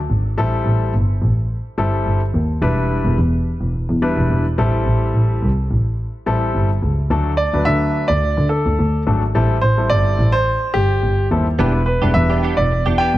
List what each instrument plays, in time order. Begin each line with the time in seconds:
0.10 double bass G#1
0.37 double bass A1, grand piano G3 C4 E4 A4
0.66 double bass A1
0.94 double bass G1
1.22 double bass A1
1.78 double bass G1, grand piano G3 C4 E4 A4
2.06 double bass G1
2.34 double bass D#2
2.62 double bass E1, grand piano G3 D4 E4 B4
3.05 double bass E1
3.18 double bass E2
3.61 double bass E1
3.74 double bass E2
3.89 double bass E2
4.02 grand piano G3 D4 E4 B4
4.17 double bass E1
4.30 double bass E1
4.58 double bass A1, grand piano G3 C4 E4 A4
4.86 double bass A1
5.14 double bass A1
5.42 double bass C2
5.70 double bass A1
6.26 double bass A1, grand piano G3 C4 E4 A4
6.55 double bass G1
6.83 double bass C#2
7.10 double bass D2, grand piano F#3 A3 D4 A4
7.37 grand piano D5
7.53 double bass D2, grand piano F#3 A3 D4 B4
7.65 double bass D3, grand piano E5
8.08 double bass D2, grand piano D5
8.23 double bass D3
8.38 double bass D3
8.49 grand piano A4
8.66 double bass D2
8.79 double bass D2
9.07 double bass G#1, grand piano F#3 A3 D4 A4
9.35 double bass A1, grand piano G3 C4 E4 A4
9.61 double bass A1, grand piano C5
9.78 grand piano G3 C4 E4 A4
9.90 double bass G1, grand piano D5
10.19 double bass A1
10.32 grand piano C5
10.74 double bass G1, grand piano G4
11.03 double bass G1
11.31 double bass D#2, grand piano G3 C4 E4 A4
11.59 double bass E1, grand piano G3 D4 E4 B4, clean electric guitar B3 D4 G4
11.74 muted clean electric guitar stroke
11.86 grand piano B4, muted clean electric guitar stroke
12.02 double bass E1, grand piano G3 D4 E4 B4, clean electric guitar B3 D4 G4
12.14 double bass E2, grand piano E5, muted clean electric guitar stroke
12.30 clean electric guitar B3 D4 G4
12.43 clean electric guitar B3 D4 G4
12.57 double bass E1, grand piano D5, muted clean electric guitar stroke
12.71 double bass E2, muted clean electric guitar stroke
12.86 double bass E2, clean electric guitar B3 D4 G4
12.98 clean electric guitar B3 D4 G4, grand piano G5
13.14 double bass E1, muted clean electric guitar stroke